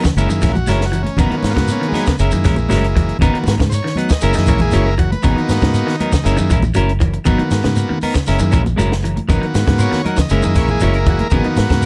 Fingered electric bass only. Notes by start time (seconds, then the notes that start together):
0.16 F#1
0.29 F#2
0.43 A#1
0.68 F#1
1.19 G#1
1.44 G#2
1.57 G#2
2.20 F#1
2.33 F#2
2.46 A#1
2.72 F#1
3.22 G#1
3.35 muted fingered electric bass stroke
3.48 G#2
3.61 G#2
4.23 F#1
4.38 F#2
4.49 A#1
4.75 F#1
5.25 G#1
5.50 G#2
5.63 G#2
6.26 F#1
6.40 F#2
6.51 A#1
6.78 F#1
7.27 G#1
7.52 G#2
7.66 G#2
8.29 F#1
8.41 F#2
8.54 A#1
8.79 F#1
9.30 G#1
9.43 muted fingered electric bass stroke
9.55 G#2
9.68 G#2
10.31 F#1
10.46 F#2
10.56 A#1
10.84 F#1
11.32 G#1
11.59 G#2
11.71 G#2